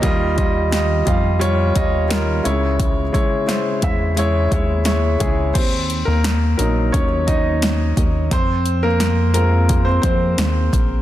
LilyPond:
<<
  \new Staff \with { instrumentName = "Grand piano" } { \time 4/4 \key ees \mixolydian \tempo 4 = 87 <g f' ees''>8 <g f' ees''>8 <g f' ees''>8 <g f' f''>8 <g f' des''>8 <g f' ees''>8 <g f' bes'>8 <aes fes' des''>8~ | <aes fes' des''>8 <aes fes' des''>8 <aes fes' c''>8 <aes fes' fes''>8 <aes fes' des''>8 <aes fes' des''>8 <aes fes' des''>8 <aes fes' aes'>8 | <c' c''>8. <bes bes'>8. bes'8 <des' des''>8 <ees' ees''>4 r8 | <c' c''>8. <bes bes'>8. <bes bes'>8. <c' c''>16 <c' c''>4 r8 | }
  \new Staff \with { instrumentName = "Grand piano" } { \time 4/4 \key ees \mixolydian ees4. r2 des8~ | des4 r2. | r4. <ges bes ees'>8 r2 | r4. <aes c' f'>4. r4 | }
  \new Staff \with { instrumentName = "Analog synth bass" } { \clef bass \time 4/4 \key ees \mixolydian ees,4. f,4 ees,4 des,8~ | des,8 r4 fes,4 ees,4 des,8 | ees,8. ees,8. bes,,8 ees,4. ees,8 | f,2~ f,8 f,8 ees,8 bes,,8 | }
  \new DrumStaff \with { instrumentName = "Drums" } \drummode { \time 4/4 <hh bd>8 <hh bd>8 <hh sn>8 <hh bd>8 hh8 <hh bd>8 <hh sn>8 hh8 | <hh bd>8 <hh bd>8 <hh sn>8 <hh bd>8 hh8 <hh bd>8 <hh sn>8 <hh bd>8 | <cymc hh bd>8 hh8 <hh sn>8 hh8 <hh bd>8 <hh bd>8 <hh sn>8 <hh bd>8 | <hh bd>8 hh8 <hh sn>8 hh8 <hh bd>8 <hh bd>8 <hh sn>8 <hh bd>8 | }
>>